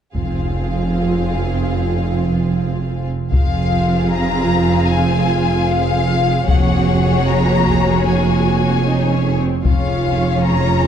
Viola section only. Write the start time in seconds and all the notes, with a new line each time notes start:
0.16 C4 F4
3.32 C4 F4
6.49 A#3 F#4
8.86 D#4
9.12 C#4
9.38 C4
9.65 C#4 F4